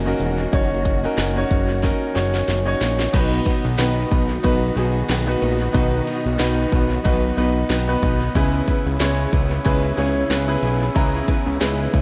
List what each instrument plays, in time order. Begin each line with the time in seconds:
Already playing: analog synth bass F#1, string section D#3 A#3 F#4, grand piano C#4 D#4 F#4 A#4
0.06 grand piano C#4 D#4 F#4 A#4
0.20 analog synth bass E1, closed hi-hat
0.52 analog synth bass F#1, grand piano C#4 D#4 F#4 C#5, kick, closed hi-hat
0.85 kick, closed hi-hat
1.04 grand piano C#4 D#4 F#4 A#4
1.18 analog synth bass F#1, snare, closed hi-hat
1.36 grand piano C#4 D#4 F#4 C#5
1.51 analog synth bass F#1, kick, closed hi-hat
1.83 grand piano C#4 D#4 F#4 A#4, kick, snare, closed hi-hat
2.15 analog synth bass F#1, grand piano C#4 D#4 F#4 C#5, snare, closed hi-hat
2.34 snare
2.48 analog synth bass F#1, snare, closed hi-hat
2.65 grand piano C#4 D#4 F#4 C#5
2.81 analog synth bass A#1, snare, open hi-hat
2.99 snare
3.13 analog synth bass B1, steel-string acoustic guitar B2 D#3 F#3 B3 D#4 B4, grand piano B2 B3 D#4 F#4 B4, string section D#3 B3 F#4, kick, crash, ride
3.45 steel-string acoustic guitar F#3 B3 D#4 B4, kick, ride
3.65 analog synth bass B1
3.77 analog synth bass B1, steel-string acoustic guitar B2 D#3 F#3 B3 D#4 B4, grand piano B3 D#4 F#4 B4, snare, ride
4.11 analog synth bass B1, steel-string acoustic guitar F#3 B3 D#4 B4, kick, ride
4.43 analog synth bass B1, steel-string acoustic guitar F#3 B3 D#4 B4, grand piano B3 D#4 F#4 B4, kick, ride
4.75 analog synth bass B1, steel-string acoustic guitar F#3 B3 D#4 B4, grand piano B3 D#4 F#4 G#4, ride
5.09 analog synth bass B1, steel-string acoustic guitar B2 D#3 F#3 B3 D#4 B4, snare, ride
5.27 grand piano B3 D#4 F#4 B4
5.41 analog synth bass A#1, steel-string acoustic guitar F#3 B3 D#4 B4, ride
5.73 analog synth bass B1, steel-string acoustic guitar B2 D#3 F#3 B3 D#4 B4, grand piano B2 B3 D#4 F#4 B4, kick, ride
6.06 steel-string acoustic guitar F#3 B3 D#4 B4, ride
6.26 analog synth bass B1
6.38 analog synth bass B1, steel-string acoustic guitar B2 D#3 F#3 B3 D#4 B4, grand piano B3 D#4 F#4 B4, snare, ride
6.72 analog synth bass B1, steel-string acoustic guitar F#3 B3 D#4 B4, kick, ride
7.03 analog synth bass B1, steel-string acoustic guitar F#3 B3 D#4, grand piano B3 D#4 F#4 B4, kick, ride
7.08 steel-string acoustic guitar B4
7.36 analog synth bass B1, steel-string acoustic guitar F#3 B3 D#4 B4, grand piano B3 D#4 F#4 B4, ride
7.69 analog synth bass B1, steel-string acoustic guitar B2 D#3 F#3 B3 D#4 B4, snare, ride
7.88 grand piano B3 D#4 F#4 B4
8.02 analog synth bass B1, steel-string acoustic guitar F#3 B3 D#4 B4, kick, ride
8.35 analog synth bass C#2, steel-string acoustic guitar C#3 G#3 B3 E4 B4, grand piano C#3 C#4 E4 G#4 B4, string section C#3 E4, kick, ride
8.67 steel-string acoustic guitar B3 E4 B4, kick, ride
8.86 analog synth bass C#2
9.00 analog synth bass C#2, steel-string acoustic guitar C#3 G#3 B3 E4 B4, grand piano C#4 E4 G#4 C#5, snare, ride
9.33 analog synth bass C#2, steel-string acoustic guitar B3 E4 B4, kick, ride
9.65 analog synth bass C#2, steel-string acoustic guitar G#3 B3 E4 B4, grand piano C#4 E4 G#4 B4, kick, ride
9.97 analog synth bass C#2, steel-string acoustic guitar B3 E4 B4, grand piano C#4 E4 G#4 C#5, ride
10.30 analog synth bass C#2, steel-string acoustic guitar C#3 G#3 B3 E4 B4, snare, ride
10.47 grand piano C#4 E4 G#4 B4
10.63 analog synth bass B1, steel-string acoustic guitar B3 E4 B4, ride
10.95 analog synth bass C#2, steel-string acoustic guitar C#3 G#3 B3 E4 B4, grand piano C#3 C#4 E4 G#4 A#5, kick, ride
11.28 steel-string acoustic guitar B3 E4 B4, kick, ride
11.46 analog synth bass C#2
11.60 analog synth bass C#2, steel-string acoustic guitar C#3 G#3 B3 E4 B4, grand piano C#4 D#4 G#4 B4, snare, ride
11.67 grand piano E4
11.93 analog synth bass C#2, steel-string acoustic guitar B3 E4 B4, kick, ride